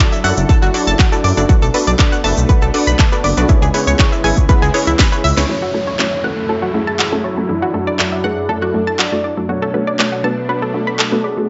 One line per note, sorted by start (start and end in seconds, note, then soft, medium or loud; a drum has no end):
0.00 1.45 F#3 medium
0.00 0.21 D4 medium
0.00 3.45 D4 medium
0.00 0.21 E4 medium
0.00 1.45 E4 medium
0.00 0.21 F#4 medium
0.00 0.21 A4 medium
0.00 1.47 A4 medium
0.00 0.21 D5 medium
0.00 shaker medium
0.12 0.23 E5 medium
0.12 closed hi-hat soft
0.12 shaker soft
0.24 0.32 F#2 medium
0.24 0.46 D4 medium
0.24 0.46 E4 medium
0.24 0.46 F#4 medium
0.24 0.46 A4 medium
0.24 0.46 E5 medium
0.24 0.29 F#5 loud
0.24 open hi-hat medium
0.37 0.45 F#1 medium
0.37 closed hi-hat soft
0.37 shaker medium
0.49 0.71 D4 medium
0.49 0.71 E4 medium
0.49 0.71 F#4 medium
0.49 0.57 A4 loud
0.49 0.71 A4 medium
0.49 0.71 F#5 medium
0.49 kick loud
0.49 closed hi-hat medium
0.49 shaker medium
0.62 0.70 F#1 medium
0.62 0.70 F#4 loud
0.62 closed hi-hat soft
0.62 shaker soft
0.74 0.96 D4 medium
0.74 0.96 E4 medium
0.74 0.96 F#4 medium
0.74 0.96 A4 medium
0.74 0.96 D5 loud
0.74 open hi-hat loud
0.87 0.95 F#1 medium
0.87 0.92 A5 loud
0.87 closed hi-hat medium
0.87 shaker medium
0.99 1.12 F#4 medium
0.99 kick loud
0.99 clap loud
0.99 closed hi-hat soft
0.99 shaker medium
1.12 1.25 D4 medium
1.12 1.25 E4 medium
1.12 1.25 F#4 medium
1.12 1.17 A4 medium
1.12 1.25 A4 medium
1.12 1.25 D5 loud
1.12 closed hi-hat soft
1.12 shaker soft
1.24 1.32 F#2 medium
1.24 1.32 D5 medium
1.24 open hi-hat medium
1.37 1.45 F#1 medium
1.37 1.47 D4 medium
1.37 1.47 E4 medium
1.37 1.47 F#4 medium
1.37 1.47 A4 medium
1.37 1.47 D5 loud
1.37 closed hi-hat medium
1.37 shaker medium
1.49 3.47 A3 medium
1.49 5.45 B3 medium
1.49 1.63 D4 medium
1.49 1.54 F#4 medium
1.49 1.63 F#4 medium
1.49 1.63 A4 medium
1.49 1.63 B4 medium
1.49 1.63 D5 medium
1.49 kick loud
1.49 closed hi-hat medium
1.49 shaker medium
1.62 1.70 B1 medium
1.62 1.70 A4 loud
1.62 closed hi-hat soft
1.62 shaker soft
1.74 1.88 D4 medium
1.74 1.88 F#4 medium
1.74 1.88 A4 medium
1.74 1.86 B4 medium
1.74 1.88 B4 medium
1.74 1.88 D5 medium
1.74 open hi-hat loud
1.87 1.95 B1 medium
1.87 1.92 D5 loud
1.87 closed hi-hat medium
1.87 shaker medium
1.99 2.21 D4 medium
1.99 2.21 F#4 medium
1.99 2.21 A4 medium
1.99 2.21 B4 medium
1.99 2.07 D5 medium
1.99 2.21 D5 medium
1.99 kick loud
1.99 clap loud
1.99 closed hi-hat medium
1.99 shaker medium
2.12 2.23 F#5 medium
2.12 closed hi-hat soft
2.12 shaker soft
2.24 2.32 F#1 medium
2.24 2.46 D4 medium
2.24 2.46 F#4 medium
2.24 2.46 A4 medium
2.24 2.46 B4 medium
2.24 2.46 E5 medium
2.24 2.29 A5 loud
2.24 open hi-hat medium
2.37 2.45 B1 medium
2.37 closed hi-hat medium
2.37 shaker medium
2.49 2.71 D4 medium
2.49 2.71 F#4 medium
2.49 2.71 A4 medium
2.49 2.57 B4 loud
2.49 2.71 B4 medium
2.49 2.71 F#5 medium
2.49 kick loud
2.49 closed hi-hat medium
2.49 shaker medium
2.62 2.70 B1 medium
2.62 2.70 A4 loud
2.62 closed hi-hat soft
2.62 shaker soft
2.74 2.96 D4 loud
2.74 2.96 F#4 medium
2.74 2.96 A4 medium
2.74 2.96 B4 medium
2.74 2.96 D5 loud
2.74 open hi-hat loud
2.87 2.95 B1 medium
2.87 2.92 B5 loud
2.87 closed hi-hat medium
2.87 shaker medium
2.99 3.12 A4 medium
2.99 kick loud
2.99 clap loud
2.99 closed hi-hat medium
2.99 shaker medium
3.12 3.25 D4 medium
3.12 3.25 F#4 medium
3.12 3.25 A4 medium
3.12 3.17 B4 medium
3.12 3.25 B4 medium
3.12 3.25 D5 loud
3.12 closed hi-hat soft
3.12 shaker soft
3.24 3.32 F#1 medium
3.24 3.32 D5 medium
3.24 open hi-hat medium
3.37 3.45 B1 medium
3.37 3.47 D4 medium
3.37 3.47 F#4 medium
3.37 3.47 A4 medium
3.37 3.47 B4 medium
3.37 3.47 D5 loud
3.37 closed hi-hat medium
3.37 shaker medium
3.49 5.47 C#3 medium
3.49 5.47 G#3 medium
3.49 3.63 C#4 medium
3.49 3.54 E4 medium
3.49 3.63 E4 medium
3.49 5.47 E4 medium
3.49 3.63 G#4 medium
3.49 3.63 B4 medium
3.49 3.63 C#5 medium
3.49 kick loud
3.49 closed hi-hat medium
3.49 shaker medium
3.62 3.70 C#2 medium
3.62 3.70 G#4 loud
3.62 closed hi-hat soft
3.62 shaker soft
3.74 3.88 C#4 medium
3.74 3.88 E4 medium
3.74 3.88 G#4 medium
3.74 3.88 B4 medium
3.74 3.86 B4 medium
3.74 3.88 C#5 loud
3.74 open hi-hat loud
3.87 3.95 C#2 medium
3.87 3.92 C#5 loud
3.87 closed hi-hat medium
3.87 shaker medium
3.98 4.21 C#4 medium
3.98 4.21 E4 medium
3.98 4.21 G#4 medium
3.98 4.21 B4 medium
3.98 4.21 C#5 medium
3.98 4.07 C#5 medium
3.98 kick loud
3.98 clap loud
3.98 closed hi-hat medium
3.98 shaker medium
4.12 4.23 E5 medium
4.12 closed hi-hat soft
4.12 shaker soft
4.24 4.32 G#1 medium
4.24 4.46 C#4 medium
4.24 4.46 E4 medium
4.24 4.46 G#4 medium
4.24 4.46 B4 medium
4.24 4.46 E5 medium
4.24 4.29 G#5 loud
4.24 open hi-hat medium
4.37 4.45 C#2 medium
4.37 kick medium
4.37 closed hi-hat medium
4.37 shaker medium
4.49 4.71 C#4 medium
4.49 4.71 E4 medium
4.49 4.71 G#4 medium
4.49 4.57 B4 loud
4.49 4.71 B4 medium
4.49 4.71 F#5 medium
4.49 kick loud
4.49 closed hi-hat medium
4.49 shaker medium
4.62 4.70 C#2 medium
4.62 4.70 G#4 loud
4.62 closed hi-hat soft
4.62 shaker soft
4.74 4.96 C#4 loud
4.74 4.96 E4 medium
4.74 4.82 G#4 medium
4.74 4.96 G#4 medium
4.74 4.96 B4 medium
4.74 4.96 C#5 loud
4.74 open hi-hat loud
4.87 4.95 C#2 medium
4.87 4.92 E4 loud
4.87 closed hi-hat medium
4.87 shaker medium
4.99 5.11 B4 loud
4.99 kick loud
4.99 snare loud
4.99 clap loud
4.99 closed hi-hat medium
4.99 shaker medium
5.12 5.25 C#4 medium
5.12 5.25 E4 medium
5.12 5.25 G#4 medium
5.12 5.25 B4 medium
5.12 5.20 B4 loud
5.12 5.25 C#5 loud
5.12 closed hi-hat soft
5.12 shaker soft
5.24 5.32 C#2 medium
5.24 5.32 E5 loud
5.24 open hi-hat medium
5.37 5.45 C#2 medium
5.37 5.47 C#4 medium
5.37 5.47 E4 medium
5.37 5.47 G#4 medium
5.37 5.47 B4 medium
5.37 5.47 C#5 loud
5.37 snare medium
5.37 closed hi-hat medium
5.37 shaker medium
5.49 9.45 F#2 medium
5.49 11.45 F#3 medium
5.49 7.47 A3 medium
5.49 5.63 A3 medium
5.49 5.63 C#4 medium
5.49 5.54 E4 medium
5.49 9.45 E4 medium
5.49 5.63 E4 medium
5.49 5.63 F#4 medium
5.49 5.63 A4 medium
5.49 6.26 C#5 loud
5.49 downlifter medium
5.62 5.70 F#4 loud
5.74 5.88 A3 medium
5.74 5.88 C#4 medium
5.74 5.88 E4 medium
5.74 5.88 F#4 medium
5.74 5.86 A4 medium
5.74 5.88 A4 medium
5.87 5.92 C#5 medium
5.99 6.21 A3 medium
5.99 6.21 C#4 medium
5.99 6.21 E4 medium
5.99 6.21 F#4 medium
5.99 6.21 A4 medium
5.99 6.07 C#5 medium
5.99 clap loud
6.12 6.23 E5 medium
6.24 6.46 A3 medium
6.24 6.46 C#4 medium
6.24 6.46 E4 medium
6.24 6.46 F#4 medium
6.24 6.76 A4 medium
6.24 6.46 B4 medium
6.24 6.29 F#5 loud
6.49 6.71 A3 medium
6.49 6.71 C#4 medium
6.49 6.71 E4 medium
6.49 6.71 F#4 medium
6.49 6.57 A4 loud
6.49 6.71 C#5 medium
6.62 6.70 F#4 loud
6.74 6.96 A3 medium
6.74 6.96 C#4 medium
6.74 6.96 E4 medium
6.74 6.96 F#4 medium
6.74 7.26 G#4 medium
6.74 6.96 A4 loud
6.87 6.92 A5 loud
6.99 7.12 F#4 medium
6.99 clap loud
7.12 7.25 A3 medium
7.12 7.25 C#4 medium
7.12 7.25 E4 medium
7.12 7.25 F#4 medium
7.12 7.17 A4 medium
7.12 7.25 A4 medium
7.24 7.49 F#4 medium
7.24 7.32 C#5 medium
7.37 7.47 A3 medium
7.37 7.47 C#4 medium
7.37 7.47 E4 medium
7.37 7.47 F#4 medium
7.37 7.47 A4 medium
7.49 7.63 F#2 medium
7.49 7.63 A3 medium
7.49 7.63 D4 medium
7.49 9.47 D4 medium
7.49 7.54 E4 medium
7.49 7.76 E4 medium
7.49 7.63 E4 medium
7.49 7.63 F#4 medium
7.49 7.63 A4 medium
7.62 7.70 F#4 loud
7.74 7.88 F#2 medium
7.74 7.88 A3 medium
7.74 7.88 D4 medium
7.74 7.88 E4 medium
7.74 8.26 F#4 loud
7.74 7.88 F#4 medium
7.74 7.87 A4 medium
7.74 7.88 A4 medium
7.87 7.92 D5 medium
7.99 8.21 F#2 medium
7.99 8.21 A3 medium
7.99 8.21 D4 medium
7.99 8.21 E4 medium
7.99 8.21 F#4 medium
7.99 8.21 A4 medium
7.99 8.07 D5 medium
7.99 clap loud
8.12 8.23 E5 medium
8.24 8.46 F#2 medium
8.24 8.46 A3 medium
8.24 8.46 D4 medium
8.24 8.46 E4 medium
8.24 8.46 F#4 medium
8.24 8.51 G#4 medium
8.24 8.46 B4 medium
8.24 8.29 F#5 loud
8.49 8.71 F#2 medium
8.49 8.71 A3 medium
8.49 8.71 D4 medium
8.49 8.71 E4 medium
8.49 8.71 F#4 medium
8.49 8.57 A4 loud
8.49 8.98 A4 loud
8.49 8.71 D5 medium
8.62 8.70 F#4 loud
8.74 8.96 F#2 medium
8.74 8.96 A3 medium
8.74 8.96 D4 medium
8.74 8.96 E4 medium
8.74 8.96 F#4 medium
8.74 8.96 A4 loud
8.87 8.92 A5 loud
8.99 9.11 F#4 medium
8.99 9.35 D5 loud
8.99 clap loud
9.12 9.25 F#2 medium
9.12 9.25 A3 medium
9.12 9.25 D4 medium
9.12 9.25 E4 medium
9.12 9.25 F#4 medium
9.12 9.17 A4 medium
9.12 9.25 A4 medium
9.24 9.32 D5 medium
9.37 9.47 F#2 medium
9.37 9.47 A3 medium
9.37 9.47 D4 medium
9.37 9.47 E4 medium
9.37 9.47 F#4 medium
9.37 9.47 A4 loud
9.49 11.47 B2 medium
9.49 9.63 A3 medium
9.49 11.47 A3 medium
9.49 9.63 B3 medium
9.49 9.63 D4 medium
9.49 11.47 D4 medium
9.49 9.54 F#4 medium
9.49 9.63 F#4 medium
9.49 9.63 A4 medium
9.49 10.25 C#5 loud
9.62 9.70 A4 loud
9.74 9.88 A3 medium
9.74 9.88 B3 medium
9.74 9.88 D4 medium
9.74 9.88 F#4 medium
9.74 9.88 A4 medium
9.74 9.87 B4 medium
9.87 9.92 D5 medium
9.99 10.21 A3 medium
9.99 10.21 B3 medium
9.99 10.21 D4 medium
9.99 10.21 F#4 medium
9.99 10.21 A4 medium
9.99 10.07 D5 medium
9.99 clap loud
10.12 10.23 F#5 medium
10.24 10.46 A3 medium
10.24 10.46 B3 medium
10.24 10.46 D4 medium
10.24 10.46 F#4 medium
10.24 10.75 B4 loud
10.24 10.46 B4 medium
10.24 10.29 A5 loud
10.49 10.71 A3 medium
10.49 10.71 B3 medium
10.49 10.71 D4 medium
10.49 10.71 F#4 medium
10.49 10.57 B4 loud
10.49 10.71 C#5 medium
10.62 10.70 A4 loud
10.74 10.96 A3 medium
10.74 10.96 B3 medium
10.74 10.96 D4 medium
10.74 10.96 F#4 medium
10.74 11.25 A4 loud
10.74 10.96 A4 loud
10.87 10.92 B5 loud
10.99 11.11 A4 medium
10.99 clap loud
11.12 11.25 A3 medium
11.12 11.25 B3 medium
11.12 11.25 D4 medium
11.12 11.25 F#4 medium
11.12 11.25 A4 medium
11.12 11.17 B4 medium
11.24 11.49 G#4 medium
11.24 11.32 D5 medium
11.37 11.47 A3 medium
11.37 11.47 B3 medium
11.37 11.47 D4 medium
11.37 11.47 F#4 medium
11.37 11.47 A4 loud